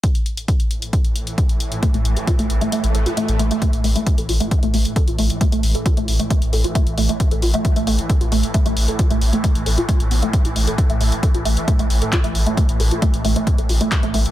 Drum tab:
HH |xxxxxxxxxxxxxxxx|xxxxxxxxxxxxxxxx|xxoxxxoxxxoxxxox|xxoxxxoxxxoxxxox|
CP |----------------|----------------|----------------|----------------|
BD |o---o---o---o---|o---o-----------|o---o---o---o---|o---o---o---o---|

HH |xxoxxxoxxxoxxxox|xxoxxxoxxxoxxxox|xxoxxxoxxxoxxxox|xxoxxxoxxxoxxxox|
CP |----------------|----------------|------------x---|------------x---|
BD |o---o---o---o---|o---o---o---o---|o---o---o---o---|o---o---o---o---|